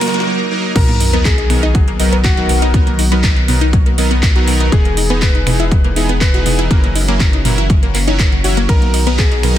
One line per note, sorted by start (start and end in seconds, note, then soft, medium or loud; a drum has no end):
0.00 0.25 C#3 medium
0.00 0.25 E3 medium
0.00 0.25 F#3 medium
0.00 0.14 F#3 medium
0.00 0.25 A#3 medium
0.00 0.14 A#3 medium
0.00 0.07 A#3 loud
0.00 0.26 D#4 medium
0.00 0.14 D#4 medium
0.00 0.25 F#4 medium
0.00 0.24 A#4 loud
0.00 0.14 A#4 medium
0.00 0.26 D#5 medium
0.00 snare loud
0.00 open hi-hat loud
0.00 riser medium
0.08 snare loud
0.14 0.17 A#3 medium
0.14 snare medium
0.14 closed hi-hat soft
0.20 snare medium
0.26 0.39 F#3 medium
0.26 0.39 A#3 medium
0.26 0.39 D#4 medium
0.26 0.39 A#4 medium
0.51 0.63 F#3 medium
0.51 0.63 A#3 medium
0.51 0.63 D#4 medium
0.51 0.63 A#4 medium
0.76 4.70 B1 medium
0.76 4.68 D#3 medium
0.76 4.68 F#3 medium
0.76 0.88 F#3 medium
0.76 6.67 B3 medium
0.76 0.88 B3 medium
0.76 0.81 B3 loud
0.76 0.88 D#4 medium
0.76 4.68 F#4 medium
0.76 4.68 A#4 medium
0.76 0.88 A#4 medium
0.76 1.20 A#4 loud
0.76 0.81 B4 medium
0.76 kick loud
0.76 closed hi-hat medium
0.76 crash loud
0.76 sub drop medium
0.88 0.92 A#3 medium
0.88 0.92 A#4 medium
0.88 closed hi-hat soft
1.00 1.06 D#4 medium
1.00 1.06 D#5 medium
1.00 open hi-hat loud
1.13 1.25 F#3 medium
1.13 1.25 B3 medium
1.13 1.18 B3 loud
1.13 1.25 D#4 medium
1.13 1.25 A#4 loud
1.13 1.18 B4 medium
1.13 closed hi-hat soft
1.25 1.31 B3 medium
1.25 2.15 G#4 loud
1.25 1.31 B4 medium
1.25 kick loud
1.25 clap loud
1.25 closed hi-hat medium
1.38 1.41 D#4 medium
1.38 1.41 D#5 medium
1.38 closed hi-hat soft
1.50 1.55 B2 medium
1.50 1.63 F#3 medium
1.50 1.55 B3 medium
1.50 1.63 B3 medium
1.50 1.63 D#4 medium
1.50 1.63 A#4 medium
1.50 finger snap medium
1.50 open hi-hat medium
1.63 1.68 D#4 loud
1.63 1.68 D#5 medium
1.63 closed hi-hat soft
1.75 1.80 F#3 medium
1.75 1.80 F#4 medium
1.75 kick loud
1.75 closed hi-hat medium
1.88 1.91 A#3 medium
1.88 1.91 A#4 medium
1.88 closed hi-hat soft
2.00 2.12 F#3 medium
2.00 2.12 B3 medium
2.00 2.12 D#4 medium
2.00 2.05 D#4 medium
2.00 2.12 A#4 loud
2.00 2.05 D#5 medium
2.00 open hi-hat loud
2.12 2.18 B3 loud
2.12 2.18 B4 medium
2.12 closed hi-hat soft
2.24 2.30 B3 medium
2.24 4.63 F#4 loud
2.24 2.30 B4 medium
2.24 kick loud
2.24 clap loud
2.24 closed hi-hat medium
2.37 2.71 F#3 medium
2.37 2.71 B3 medium
2.37 2.71 D#4 medium
2.37 2.42 F#4 loud
2.37 2.71 A#4 medium
2.37 2.42 F#5 medium
2.37 closed hi-hat soft
2.49 2.55 B2 loud
2.49 2.55 B3 medium
2.49 open hi-hat loud
2.62 2.67 D#4 loud
2.62 2.67 D#5 medium
2.62 closed hi-hat soft
2.74 2.87 F#3 medium
2.74 2.87 B3 medium
2.74 2.79 B3 loud
2.74 2.87 D#4 medium
2.74 2.87 A#4 medium
2.74 2.79 B4 medium
2.74 kick loud
2.74 closed hi-hat medium
2.87 2.90 A#3 medium
2.87 2.90 A#4 medium
2.87 closed hi-hat soft
2.99 3.04 D#4 medium
2.99 3.04 D#5 medium
2.99 open hi-hat loud
3.12 3.23 F#3 medium
3.12 3.17 B3 loud
3.12 3.23 B3 medium
3.12 3.23 D#4 medium
3.12 3.23 A#4 loud
3.12 3.17 B4 medium
3.12 closed hi-hat soft
3.24 3.29 B3 medium
3.24 3.29 B4 medium
3.24 kick loud
3.24 clap loud
3.24 closed hi-hat medium
3.36 3.39 D#4 medium
3.36 3.39 D#5 medium
3.36 closed hi-hat soft
3.48 3.54 B2 loud
3.48 3.61 F#3 medium
3.48 3.54 B3 medium
3.48 3.61 B3 medium
3.48 3.61 D#4 medium
3.48 3.61 A#4 medium
3.48 open hi-hat medium
3.61 3.66 D#4 loud
3.61 3.66 D#5 medium
3.61 closed hi-hat soft
3.73 3.79 F#3 medium
3.73 3.79 F#4 medium
3.73 kick loud
3.73 closed hi-hat medium
3.86 3.89 A#3 medium
3.86 3.89 A#4 medium
3.86 closed hi-hat soft
3.98 4.11 F#3 medium
3.98 4.11 B3 medium
3.98 4.03 D#4 medium
3.98 4.11 D#4 medium
3.98 4.11 A#4 medium
3.98 4.03 D#5 medium
3.98 open hi-hat loud
4.11 4.16 B3 loud
4.11 4.16 B4 medium
4.11 closed hi-hat soft
4.23 4.28 B3 medium
4.23 4.28 B4 medium
4.23 kick loud
4.23 clap loud
4.23 closed hi-hat medium
4.36 4.69 F#3 medium
4.36 4.69 B3 medium
4.36 4.69 D#4 medium
4.36 4.41 F#4 loud
4.36 4.69 A#4 medium
4.36 4.41 F#5 medium
4.36 closed hi-hat soft
4.48 4.53 B2 loud
4.48 4.53 B3 medium
4.48 open hi-hat loud
4.60 4.65 D#4 loud
4.60 4.65 D#5 medium
4.60 closed hi-hat soft
4.72 6.68 E1 medium
4.72 8.65 E3 medium
4.72 4.85 E3 medium
4.72 6.69 G#3 medium
4.72 4.85 B3 medium
4.72 4.78 B3 loud
4.72 6.69 D#4 medium
4.72 4.85 D#4 medium
4.72 6.69 G#4 medium
4.72 5.17 G#4 loud
4.72 4.85 G#4 medium
4.72 4.78 B4 medium
4.72 kick loud
4.72 closed hi-hat medium
4.85 4.88 A#3 medium
4.85 4.88 A#4 medium
4.85 closed hi-hat soft
4.97 5.03 D#4 medium
4.97 5.03 D#5 medium
4.97 open hi-hat loud
5.10 5.22 E3 medium
5.10 5.22 B3 medium
5.10 5.15 B3 loud
5.10 5.22 D#4 medium
5.10 5.22 G#4 loud
5.10 5.15 B4 medium
5.10 closed hi-hat soft
5.22 5.27 B3 medium
5.22 6.12 B4 medium
5.22 5.27 B4 medium
5.22 kick loud
5.22 clap loud
5.22 closed hi-hat medium
5.35 5.38 D#4 medium
5.35 5.38 D#5 medium
5.35 closed hi-hat soft
5.47 5.52 B2 loud
5.47 5.59 E3 medium
5.47 5.59 B3 medium
5.47 5.52 B3 medium
5.47 5.59 D#4 medium
5.47 5.59 G#4 medium
5.47 finger snap medium
5.47 open hi-hat loud
5.60 5.65 E4 loud
5.60 5.65 E5 medium
5.60 closed hi-hat soft
5.71 5.77 F#3 medium
5.71 5.77 F#4 medium
5.71 kick loud
5.71 closed hi-hat medium
5.84 5.87 A#3 medium
5.84 5.87 A#4 medium
5.84 closed hi-hat soft
5.96 6.09 E3 medium
5.96 6.09 B3 medium
5.96 6.09 D#4 medium
5.96 6.02 D#4 medium
5.96 6.09 G#4 medium
5.96 6.02 D#5 medium
5.96 open hi-hat loud
6.09 6.14 B3 loud
6.09 6.14 B4 medium
6.09 closed hi-hat soft
6.21 6.27 B3 medium
6.21 8.59 B4 loud
6.21 6.27 B4 medium
6.21 kick loud
6.21 clap loud
6.21 closed hi-hat medium
6.34 6.68 E3 medium
6.34 6.68 B3 medium
6.34 6.68 D#4 medium
6.34 6.39 F#4 loud
6.34 6.68 G#4 medium
6.34 6.39 F#5 medium
6.34 closed hi-hat soft
6.46 6.51 B2 loud
6.46 6.51 B3 medium
6.46 open hi-hat loud
6.59 6.64 E4 loud
6.59 6.64 E5 medium
6.59 closed hi-hat soft
6.71 8.67 F#1 loud
6.71 9.58 F#3 medium
6.71 6.83 F#3 medium
6.71 6.76 A#3 loud
6.71 6.83 C#4 medium
6.71 8.67 C#4 medium
6.71 6.83 E4 medium
6.71 9.58 F#4 medium
6.71 6.76 A#4 medium
6.71 6.83 A#4 medium
6.71 kick loud
6.71 closed hi-hat medium
6.84 6.87 A#3 medium
6.84 6.87 A#4 medium
6.84 closed hi-hat soft
6.95 7.01 D#4 medium
6.95 7.01 D#5 medium
6.95 open hi-hat loud
7.08 7.20 F#3 medium
7.08 7.13 A#3 loud
7.08 7.20 C#4 medium
7.08 7.20 E4 medium
7.08 7.20 A#4 medium
7.08 7.13 A#4 medium
7.08 closed hi-hat soft
7.20 7.26 A#3 medium
7.20 7.26 A#4 medium
7.20 kick loud
7.20 clap loud
7.20 closed hi-hat medium
7.33 7.36 D#4 medium
7.33 7.36 D#5 medium
7.33 closed hi-hat soft
7.45 7.50 A#2 loud
7.45 7.58 F#3 medium
7.45 7.50 A#3 medium
7.45 7.58 C#4 medium
7.45 7.58 E4 medium
7.45 7.58 A#4 medium
7.45 open hi-hat medium
7.58 7.63 E4 loud
7.58 7.63 E5 medium
7.58 closed hi-hat soft
7.70 7.75 F#3 medium
7.70 7.75 F#4 medium
7.70 kick loud
7.70 closed hi-hat medium
7.83 7.86 A#3 medium
7.83 7.86 A#4 medium
7.83 closed hi-hat soft
7.95 7.98 A#3 medium
7.95 7.98 A#4 medium
7.95 clap soft
7.95 open hi-hat loud
8.07 8.19 F#3 medium
8.07 8.19 C#4 medium
8.07 8.15 D#4 loud
8.07 8.19 E4 medium
8.07 8.19 C#5 loud
8.07 8.15 D#5 medium
8.07 closed hi-hat soft
8.19 8.28 A#4 medium
8.19 8.28 A#5 medium
8.19 kick loud
8.19 clap loud
8.19 closed hi-hat medium
8.32 8.40 F#3 medium
8.32 8.40 F#4 medium
8.32 closed hi-hat soft
8.44 8.57 F#3 medium
8.44 8.57 C#4 medium
8.44 8.57 E4 medium
8.44 8.47 F#4 loud
8.44 8.57 C#5 medium
8.44 8.47 F#5 medium
8.44 open hi-hat loud
8.57 8.62 A#3 loud
8.57 8.62 A#4 medium
8.57 closed hi-hat soft
8.69 9.58 B1 medium
8.69 9.58 D#3 medium
8.69 8.82 F#3 medium
8.69 9.58 B3 medium
8.69 8.82 B3 medium
8.69 8.74 B3 loud
8.69 8.82 D#4 medium
8.69 9.14 A#4 loud
8.69 8.82 A#4 medium
8.69 8.74 B4 medium
8.69 kick loud
8.69 closed hi-hat medium
8.69 ride medium
8.82 8.85 A#3 medium
8.82 8.85 A#4 medium
8.82 closed hi-hat soft
8.94 8.99 D#4 medium
8.94 8.99 D#5 medium
8.94 open hi-hat loud
8.94 ride medium
9.07 9.18 F#3 medium
9.07 9.12 B3 loud
9.07 9.18 B3 medium
9.07 9.18 D#4 medium
9.07 9.18 A#4 loud
9.07 9.12 B4 medium
9.07 closed hi-hat soft
9.19 9.24 B3 medium
9.19 9.58 G#4 loud
9.19 9.24 B4 medium
9.19 kick loud
9.19 clap loud
9.19 closed hi-hat medium
9.19 ride medium
9.32 9.35 D#4 medium
9.32 9.35 D#5 medium
9.32 closed hi-hat soft
9.43 9.49 B2 loud
9.43 9.56 F#3 medium
9.43 9.49 B3 medium
9.43 9.56 B3 medium
9.43 9.56 D#4 medium
9.43 9.56 A#4 medium
9.43 finger snap medium
9.43 open hi-hat medium
9.43 ride medium